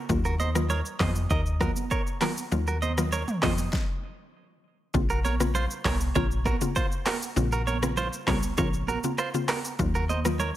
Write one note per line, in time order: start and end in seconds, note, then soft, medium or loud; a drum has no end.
0.09 0.82 D#2 loud
0.09 0.52 D#3 loud
0.09 0.52 F#3 medium
0.09 0.52 A#3 medium
0.09 0.52 F4 loud
0.09 kick loud
0.09 low conga medium
0.09 shaker medium
0.25 0.35 F#4 medium
0.25 0.34 A#4 medium
0.25 shaker soft
0.40 0.50 C5 medium
0.40 0.49 D#5 medium
0.40 high conga medium
0.40 shaker soft
0.55 0.73 D#3 medium
0.55 0.73 F#3 medium
0.55 0.73 A#3 medium
0.55 0.73 F4 medium
0.55 cross-stick loud
0.55 shaker loud
0.69 0.80 A#4 medium
0.69 0.79 C#5 medium
0.69 low conga medium
0.69 shaker medium
0.86 shaker medium
1.00 1.26 F2 loud
1.00 1.19 D#3 medium
1.00 1.19 F#3 medium
1.00 1.19 A#3 medium
1.00 1.19 F4 medium
1.00 1.10 C5 medium
1.00 1.10 D#5 medium
1.00 kick medium
1.00 cross-stick loud
1.00 clap loud
1.00 open hi-hat medium
1.00 high conga medium
1.00 low conga medium
1.00 shaker medium
1.16 shaker medium
1.30 1.70 D#2 loud
1.30 1.41 A#4 medium
1.30 1.40 D#5 medium
1.30 kick loud
1.30 shaker medium
1.46 shaker soft
1.60 1.79 D#3 medium
1.60 1.79 F#3 medium
1.60 1.80 A#3 medium
1.60 1.80 F4 medium
1.60 1.71 F#4 medium
1.60 1.70 A#4 medium
1.60 kick medium
1.60 cross-stick loud
1.60 high conga medium
1.60 shaker soft
1.76 high conga medium
1.76 shaker medium
1.91 2.01 A#4 medium
1.91 2.01 C#5 medium
1.91 kick medium
1.91 shaker medium
2.07 shaker soft
2.21 2.40 D#3 medium
2.21 2.40 F#3 medium
2.21 2.40 A#3 medium
2.21 2.40 F4 medium
2.21 2.31 F#4 medium
2.21 2.31 A#4 medium
2.21 cross-stick loud
2.21 clap loud
2.21 open hi-hat medium
2.21 high conga medium
2.21 shaker medium
2.38 shaker loud
2.52 3.24 D#2 loud
2.52 2.70 D#3 medium
2.52 2.70 F#3 medium
2.52 2.71 A#3 medium
2.52 2.71 F4 loud
2.52 low conga medium
2.52 shaker medium
2.67 2.77 F#4 medium
2.67 2.76 A#4 medium
2.67 shaker soft
2.82 2.92 C5 medium
2.82 2.92 D#5 medium
2.82 high conga medium
2.82 shaker soft
2.98 3.15 D#3 medium
2.98 3.16 F#3 medium
2.98 3.16 A#3 medium
2.98 3.16 F4 medium
2.98 cross-stick loud
2.98 shaker loud
3.12 3.23 A#4 medium
3.12 3.22 C#5 medium
3.12 low conga medium
3.12 shaker medium
3.28 mid tom loud
3.28 shaker medium
3.42 3.69 F2 medium
3.42 3.61 D#3 medium
3.42 3.61 F#3 medium
3.42 3.61 A#3 medium
3.42 3.62 F4 medium
3.42 3.53 C5 medium
3.42 3.52 D#5 medium
3.42 kick medium
3.42 cross-stick medium
3.42 clap loud
3.42 open hi-hat medium
3.42 high conga medium
3.42 low conga medium
3.42 shaker medium
3.58 shaker medium
3.73 kick loud
3.73 snare medium
4.94 5.67 A#1 loud
4.94 5.13 C#3 loud
4.94 5.13 A#3 medium
4.94 5.13 C4 medium
4.94 5.13 F4 loud
4.94 kick loud
4.94 low conga medium
4.94 shaker medium
5.10 5.19 F#4 medium
5.10 5.19 A#4 medium
5.10 shaker soft
5.25 5.35 A#4 medium
5.25 5.34 C#5 medium
5.25 high conga medium
5.25 shaker soft
5.40 5.58 C#3 medium
5.40 5.58 A#3 medium
5.40 5.58 C4 medium
5.40 5.58 F4 medium
5.40 cross-stick loud
5.40 shaker loud
5.54 5.65 F4 medium
5.54 5.64 C5 medium
5.54 low conga medium
5.54 shaker medium
5.71 shaker medium
5.85 6.11 C2 medium
5.85 5.95 A#4 medium
5.85 5.95 C#5 medium
5.85 kick loud
5.85 cross-stick loud
5.85 clap loud
5.85 open hi-hat medium
5.85 high conga medium
5.85 low conga medium
5.85 shaker medium
6.01 shaker medium
6.15 6.55 A#1 loud
6.15 6.34 C#3 loud
6.15 6.34 A#3 medium
6.15 6.34 C4 medium
6.15 6.34 F4 loud
6.15 6.26 A#4 medium
6.15 6.25 C#5 medium
6.15 kick loud
6.15 shaker medium
6.31 shaker soft
6.45 6.56 F#4 medium
6.45 6.55 A#4 medium
6.45 kick loud
6.45 cross-stick loud
6.45 high conga medium
6.45 shaker medium
6.61 6.79 C#3 medium
6.61 6.79 A#3 medium
6.61 6.79 C4 medium
6.61 6.79 F4 medium
6.61 high conga medium
6.61 shaker loud
6.76 6.86 F4 medium
6.76 6.86 C5 medium
6.76 kick loud
6.76 shaker medium
6.92 shaker medium
7.06 7.16 F#4 medium
7.06 7.16 A#4 medium
7.06 cross-stick loud
7.06 clap loud
7.06 open hi-hat medium
7.06 high conga medium
7.06 shaker medium
7.22 shaker loud
7.36 8.09 A#1 loud
7.36 7.55 C#3 loud
7.36 7.55 A#3 medium
7.36 7.55 C4 medium
7.36 7.55 F4 loud
7.36 low conga medium
7.36 shaker medium
7.52 7.62 F#4 medium
7.52 7.61 A#4 medium
7.52 shaker soft
7.67 7.77 A#4 medium
7.67 7.77 C#5 medium
7.67 high conga medium
7.67 shaker medium
7.82 8.24 C#3 medium
7.82 8.24 A#3 medium
7.82 8.24 C4 medium
7.82 8.24 F4 medium
7.82 cross-stick loud
7.82 shaker loud
7.97 8.07 F4 medium
7.97 8.07 C5 medium
7.97 low conga medium
7.97 shaker medium
8.13 shaker medium
8.27 8.54 C2 loud
8.27 8.55 C#3 medium
8.27 8.55 A#3 medium
8.27 8.56 C4 medium
8.27 8.56 F4 medium
8.27 8.38 A#4 medium
8.27 8.37 C#5 medium
8.27 kick medium
8.27 cross-stick loud
8.27 clap loud
8.27 open hi-hat medium
8.27 high conga medium
8.27 low conga medium
8.27 shaker medium
8.43 shaker medium
8.58 8.97 A#1 loud
8.58 8.76 C#3 loud
8.58 8.76 A#3 medium
8.58 8.77 C4 medium
8.58 8.77 F4 loud
8.58 8.68 A#4 medium
8.58 8.68 C#5 medium
8.58 kick loud
8.58 shaker medium
8.74 shaker soft
8.88 8.98 F#4 medium
8.88 8.98 A#4 medium
8.88 high conga medium
8.88 shaker medium
9.04 9.22 C#3 medium
9.04 9.22 A#3 medium
9.04 9.22 C4 medium
9.04 9.22 F4 medium
9.04 high conga medium
9.04 shaker loud
9.18 9.29 F4 medium
9.18 9.28 C5 medium
9.18 cross-stick loud
9.18 shaker medium
9.34 9.52 C#3 medium
9.34 9.52 A#3 medium
9.34 9.52 C4 medium
9.34 9.52 F4 medium
9.34 shaker medium
9.48 9.59 F#4 medium
9.48 9.58 A#4 medium
9.48 cross-stick loud
9.48 clap loud
9.48 open hi-hat medium
9.48 high conga medium
9.48 shaker medium
9.65 shaker loud
9.79 10.52 D#2 loud
9.79 9.98 D#3 loud
9.79 9.98 F#3 medium
9.79 9.98 A#3 medium
9.79 9.98 F4 loud
9.79 kick loud
9.79 low conga medium
9.79 shaker medium
9.95 10.04 F#4 medium
9.95 10.04 A#4 medium
9.95 shaker soft
10.09 10.20 C5 medium
10.09 10.19 D#5 medium
10.09 high conga medium
10.09 shaker medium
10.25 10.43 D#3 medium
10.25 10.43 F#3 medium
10.25 10.43 A#3 medium
10.25 10.43 F4 medium
10.25 cross-stick loud
10.25 shaker loud
10.39 10.50 A#4 medium
10.39 10.49 C#5 medium
10.39 low conga medium
10.39 shaker medium